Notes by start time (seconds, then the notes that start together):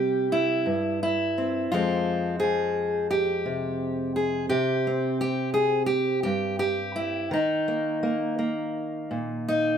Already playing: C3 G3 C4 G4
0.32 E4
0.66 G2
1.03 E4
1.38 C4
1.72 F2 F3 G#3 C4 F4
2.40 F3 G#4
3.11 G4
3.45 C3
4.16 G#4
4.49 C3 G4
4.87 C4
5.21 G4
5.54 G#4
5.86 G4
6.23 G2 G4
6.59 G4
6.96 E4
7.31 D#3 D#4
7.68 A#3
8.03 A#3
8.39 A#3
9.11 A#2
9.48 D#4